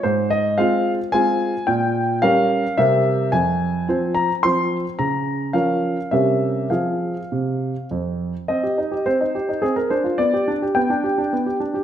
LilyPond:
\new Staff \with { instrumentName = "Grand piano" } { \time 3/4 \key f \minor \tempo 4 = 108 << { c''8 ees''8 f''4 aes''4 | g''4 f''4 e''4 | aes''4. bes''8 c'''4 | bes''4 f''4 e''4 |
f''2 r4 | \key c \minor ees''4 c''4 aes'16 bes'16 c''8 | d''4 g''4. r8 | } \\ { aes,4 <aes c' f'>4 <aes c' f'>4 | bes,4 <g des' bes'>4 <c g c' bes'>4 | f,4 <f c' c''>4 <f c' c''>4 | des4 <f des' bes'>4 <c g des' bes'>4 |
<f c' aes'>4 c4 f,4 | c'16 g'16 ees'16 g'16 c'16 ees'16 g'16 ees'16 c'16 aes'16 d'16 f'16 | b16 g'16 d'16 g'16 b16 d'16 g'16 d'16 b16 g'16 d'16 g'16 | } >> }